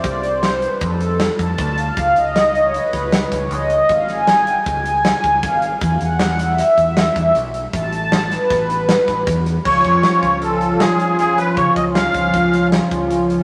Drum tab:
CC |----------|----------|----------|----------|
HH |xxxxxxxxxx|xxxxxxxxxx|xxxxxxxxxx|xxxxxxxxxx|
SD |--o---o---|--o--ooo--|-oo---o-o-|--o-o-o---|
BD |o---o--oo-|o----o-o--|o---o--oo-|o----o-o--|

CC |----------|x---------|----------|
HH |xxxxxxxxxx|-xxxxxxxxx|xxxxxxxxxx|
SD |--ooo-oo--|--o---o-oo|--o--oo---|
BD |o---o--oo-|oo-o------|oo-oo--o--|